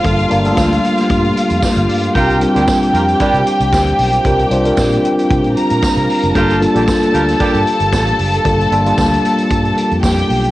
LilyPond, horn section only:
\new Staff \with { instrumentName = "Horn section" } { \time 4/4 \key g \dorian \tempo 4 = 114 r1 | <bes f' g' bes'>8 r16 <g bes d' g'>16 r8 <bes f' g' bes'>16 r16 <g bes d' g'>8 r4. | r1 | <bes f' g' bes'>8 r16 <g bes d' g'>16 r8 <bes f' g' bes'>16 r16 <g bes d' g'>8 r4. |
r1 | }